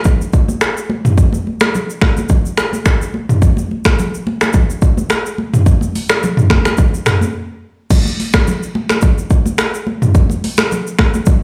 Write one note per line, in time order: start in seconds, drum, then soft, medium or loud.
0.04 kick medium
0.04 low conga medium
0.04 shaker medium
0.21 shaker medium
0.33 kick medium
0.33 shaker medium
0.48 high conga medium
0.48 shaker medium
0.61 finger snap medium
0.61 cross-stick medium
0.61 shaker medium
0.77 shaker medium
0.90 high conga medium
1.05 mid tom medium
1.05 shaker medium
1.18 kick loud
1.18 low conga medium
1.18 shaker medium
1.33 high conga medium
1.33 shaker medium
1.47 high conga soft
1.60 finger snap loud
1.60 cross-stick loud
1.60 high conga medium
1.60 shaker medium
1.75 low conga medium
1.75 shaker medium
1.90 shaker medium
2.01 finger snap medium
2.01 kick loud
2.01 cross-stick medium
2.01 high conga medium
2.17 high conga medium
2.17 shaker medium
2.29 kick medium
2.29 low conga medium
2.29 shaker medium
2.46 shaker medium
2.57 finger snap medium
2.57 cross-stick loud
2.57 shaker medium
2.73 high conga medium
2.73 shaker medium
2.86 finger snap medium
2.86 kick loud
2.86 cross-stick medium
2.86 shaker medium
3.02 shaker medium
3.14 high conga medium
3.29 mid tom medium
3.29 shaker medium
3.42 kick loud
3.42 low conga medium
3.42 shaker medium
3.57 high conga medium
3.57 shaker medium
3.71 high conga soft
3.85 finger snap loud
3.85 kick loud
3.85 cross-stick loud
3.85 high conga medium
3.85 shaker medium
3.99 low conga medium
3.99 shaker medium
4.14 shaker medium
4.27 high conga medium
4.41 finger snap medium
4.41 cross-stick medium
4.41 high conga medium
4.41 shaker medium
4.53 kick loud
4.53 low conga medium
4.53 shaker medium
4.70 shaker medium
4.82 kick medium
4.82 shaker medium
4.97 high conga medium
4.97 shaker medium
5.10 finger snap medium
5.10 cross-stick loud
5.10 shaker medium
5.26 shaker medium
5.38 high conga medium
5.54 mid tom loud
5.54 shaker medium
5.66 kick loud
5.66 low conga medium
5.66 shaker medium
5.81 high conga medium
5.81 shaker medium
5.95 open hi-hat soft
5.95 high conga soft
5.95 shaker soft
6.09 finger snap medium
6.09 cross-stick loud
6.09 high conga medium
6.09 shaker medium
6.23 low conga medium
6.23 shaker medium
6.37 mid tom loud
6.37 shaker medium
6.50 finger snap medium
6.50 kick loud
6.50 cross-stick loud
6.50 high conga medium
6.65 finger snap medium
6.65 cross-stick medium
6.65 high conga medium
6.65 shaker medium
6.77 kick medium
6.77 low conga medium
6.77 shaker medium
6.94 shaker medium
7.06 finger snap medium
7.06 cross-stick loud
7.06 mid tom medium
7.06 shaker medium
7.21 high conga medium
7.21 shaker medium
7.90 kick loud
7.90 crash loud
7.90 low conga medium
7.90 shaker medium
8.05 high conga medium
8.05 shaker medium
8.20 open hi-hat medium
8.20 high conga medium
8.33 finger snap medium
8.33 kick loud
8.33 cross-stick loud
8.33 high conga medium
8.33 shaker medium
8.47 low conga medium
8.47 shaker medium
8.63 shaker medium
8.75 high conga medium
8.89 finger snap medium
8.89 cross-stick medium
8.89 high conga medium
8.89 shaker medium
9.01 kick medium
9.01 low conga medium
9.01 shaker medium
9.18 shaker medium
9.30 kick loud
9.30 shaker medium
9.46 high conga medium
9.46 shaker medium
9.58 finger snap medium
9.58 cross-stick loud
9.58 shaker medium
9.74 shaker medium
9.87 high conga medium
10.02 mid tom medium
10.02 shaker medium
10.15 kick loud
10.15 low conga medium
10.15 shaker medium
10.30 high conga medium
10.30 shaker soft
10.44 open hi-hat medium
10.44 high conga medium
10.57 finger snap loud
10.57 cross-stick loud
10.57 high conga medium
10.57 shaker medium
10.72 low conga medium
10.72 shaker medium
10.87 shaker medium
10.99 finger snap medium
10.99 kick loud
10.99 cross-stick medium
10.99 high conga medium
11.14 high conga medium
11.14 shaker medium
11.26 kick loud
11.26 low conga medium
11.26 shaker medium